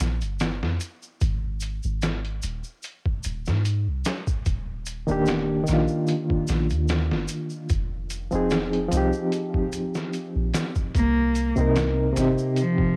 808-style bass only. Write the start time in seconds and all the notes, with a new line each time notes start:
0.00 A#1
0.22 G1
0.62 F2
1.22 G#1
1.85 G#1
2.44 D#1
3.25 D#1
3.47 G#2
3.87 C2
4.47 D#1
5.09 D#1
5.69 A#1
6.49 A#1
6.71 D#2
7.11 G1
7.71 F1
8.33 F1
8.92 C2
10.36 A#1
10.95 C2
11.58 C2
12.17 G1